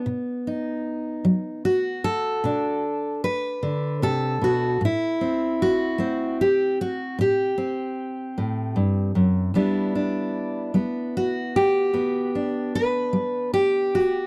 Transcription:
0.00 2.07 B3 soft
0.06 0.76 B2 medium
0.47 1.64 D#4 soft
1.25 1.95 F#3 medium
1.65 2.83 F#4 medium
2.04 3.22 A4 loud
2.44 3.14 B2 medium
2.44 4.77 D4 soft
3.24 4.02 B4 loud
3.63 4.01 D3 medium
4.02 4.41 C3 medium
4.02 4.81 A4 loud
4.42 4.80 B2 medium
4.42 4.82 F#4 medium
4.81 5.52 A2 medium
4.85 6.41 E4 medium
5.21 5.98 C4 soft
5.62 6.40 F#4 medium
5.98 6.70 A3 medium
5.98 7.56 C4 medium
6.41 6.79 G4 medium
6.81 7.19 F#4 medium
7.19 7.90 A2 medium
7.19 9.18 G4 medium
7.58 9.51 C4 soft
8.38 8.77 A2 medium
8.76 9.15 G2 medium
9.15 9.54 F#2 medium
9.54 10.26 E2 medium
9.54 10.74 G3 soft
9.54 10.74 B3 soft
9.54 9.95 D4 soft
9.54 11.56 E4 soft
9.95 11.16 D4 soft
10.74 11.46 G3 medium
10.74 11.94 B3 soft
11.17 12.35 F#4 medium
11.56 12.74 G4 loud
11.93 12.65 E2 medium
11.93 14.27 B3 soft
12.35 13.95 D4 soft
12.75 13.53 B4 loud
13.13 13.84 G3 medium
13.54 14.27 G4 loud
13.95 14.27 F#4 medium

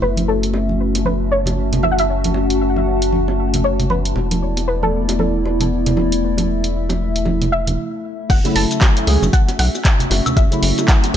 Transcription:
0.00 4.14 F#1 medium
0.00 4.12 A3 medium
0.00 1.16 B3 medium
0.00 4.16 C#4 medium
0.00 1.69 E4 medium
0.00 4.12 F#4 medium
0.00 0.29 B4 loud
0.00 2.05 E5 medium
0.00 high bongo soft
0.17 closed hi-hat soft
0.17 high conga medium
0.28 1.08 A4 medium
0.43 closed hi-hat medium
0.54 high bongo medium
0.60 5.76 F#4 medium
0.60 7.78 A5 medium
0.69 high conga medium
0.79 5.57 E5 medium
0.95 closed hi-hat medium
0.95 high bongo soft
1.05 1.17 B4 loud
1.05 high conga medium
1.32 1.80 C#5 loud
1.46 closed hi-hat medium
1.46 high bongo medium
1.46 high conga medium
1.46 low conga medium
1.73 closed hi-hat soft
1.73 low conga medium
1.83 1.91 E5 loud
1.83 high bongo soft
1.83 high conga medium
1.91 1.99 F#5 medium
1.99 3.60 E5 loud
1.99 closed hi-hat medium
2.09 4.14 F#5 medium
2.24 closed hi-hat medium
2.24 high conga medium
2.34 high bongo medium
2.50 closed hi-hat medium
2.76 high bongo soft
2.76 high conga medium
3.02 closed hi-hat medium
3.12 high conga medium
3.28 high bongo medium
3.54 closed hi-hat medium
3.54 high conga medium
3.54 low conga medium
3.64 3.76 C#5 loud
3.64 high bongo soft
3.79 closed hi-hat soft
3.79 low conga medium
3.90 4.64 B4 loud
3.90 high conga medium
4.05 closed hi-hat medium
4.16 7.78 E1 medium
4.16 8.26 A3 medium
4.16 7.78 B3 medium
4.16 8.26 E4 medium
4.16 6.21 D5 medium
4.16 high bongo medium
4.31 closed hi-hat medium
4.31 high conga medium
4.57 closed hi-hat medium
4.57 high bongo soft
4.68 7.78 E4 medium
4.68 4.83 B4 medium
4.83 5.17 A4 medium
4.83 high conga medium
5.09 closed hi-hat medium
5.09 high bongo medium
5.19 7.74 A4 medium
5.19 high conga medium
5.43 7.78 D5 medium
5.43 high bongo medium
5.60 closed hi-hat medium
5.60 high conga medium
5.60 low conga medium
5.86 closed hi-hat soft
5.86 low conga medium
5.97 high bongo medium
5.97 high conga medium
6.12 closed hi-hat medium
6.23 8.28 E5 medium
6.38 closed hi-hat medium
6.38 high bongo soft
6.38 high conga medium
6.64 closed hi-hat medium
6.89 closed hi-hat soft
6.89 high bongo medium
6.89 high conga medium
7.16 closed hi-hat medium
7.25 high bongo medium
7.25 high conga medium
7.42 closed hi-hat soft
7.42 low conga medium
7.52 7.79 E5 medium
7.67 closed hi-hat medium
7.67 high conga medium
7.67 low conga medium
8.30 8.40 F#1 loud
8.30 11.17 A3 medium
8.30 11.17 C#4 medium
8.30 10.35 F#4 medium
8.30 11.17 E5 medium
8.30 8.56 F#5 loud
8.30 kick loud
8.30 closed hi-hat medium
8.30 crash loud
8.30 shaker medium
8.44 9.04 C#3 medium
8.44 9.05 F#3 medium
8.44 9.05 A3 medium
8.44 9.05 E4 loud
8.44 closed hi-hat medium
8.44 high bongo medium
8.44 shaker soft
8.56 8.66 F#1 loud
8.56 9.36 A5 loud
8.56 open hi-hat loud
8.71 closed hi-hat soft
8.71 shaker medium
8.81 kick loud
8.81 clap loud
8.81 closed hi-hat medium
8.81 high bongo medium
8.81 shaker medium
8.87 11.17 F#4 medium
8.97 closed hi-hat medium
8.97 shaker soft
9.07 9.17 C#2 medium
9.07 9.25 C#3 medium
9.07 9.25 F#3 medium
9.07 9.25 A3 medium
9.07 9.25 G#4 medium
9.07 open hi-hat medium
9.07 high bongo medium
9.22 9.30 F#1 medium
9.22 high conga loud
9.22 low conga loud
9.22 shaker medium
9.33 9.58 F#5 loud
9.33 kick loud
9.33 closed hi-hat medium
9.33 shaker medium
9.48 closed hi-hat medium
9.48 high bongo medium
9.48 shaker soft
9.59 9.69 B1 loud
9.59 11.17 E5 medium
9.59 10.33 F#5 loud
9.59 open hi-hat loud
9.75 high bongo medium
9.75 shaker medium
9.85 kick loud
9.85 clap loud
9.85 closed hi-hat medium
9.85 shaker medium
10.00 closed hi-hat medium
10.00 low conga medium
10.00 shaker soft
10.11 10.21 F#1 loud
10.11 open hi-hat medium
10.11 high bongo medium
10.26 closed hi-hat soft
10.26 low conga medium
10.26 high woodblock medium
10.26 shaker medium
10.37 10.47 F#1 loud
10.37 11.17 E4 medium
10.37 10.85 E5 medium
10.37 kick loud
10.37 closed hi-hat medium
10.37 high bongo medium
10.37 shaker medium
10.51 11.11 C#3 medium
10.51 11.12 F#3 medium
10.51 11.12 A3 medium
10.51 11.12 E4 loud
10.51 closed hi-hat medium
10.51 shaker soft
10.62 10.73 F#1 loud
10.62 open hi-hat loud
10.78 closed hi-hat soft
10.78 high bongo medium
10.78 shaker medium
10.88 kick loud
10.88 clap loud
10.88 closed hi-hat medium
10.88 shaker medium
11.04 closed hi-hat medium
11.04 high bongo medium
11.04 shaker soft
11.14 11.17 C#3 medium

